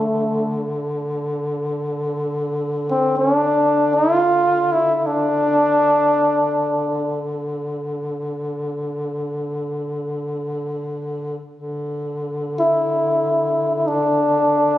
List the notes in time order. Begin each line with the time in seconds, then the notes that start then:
Already playing: D3 A3
2.90 C4
3.18 C#4
3.36 D4
3.96 F4
4.72 E4
4.95 E4
5.06 D4
11.53 D3
12.59 E4
13.75 E4
13.87 D4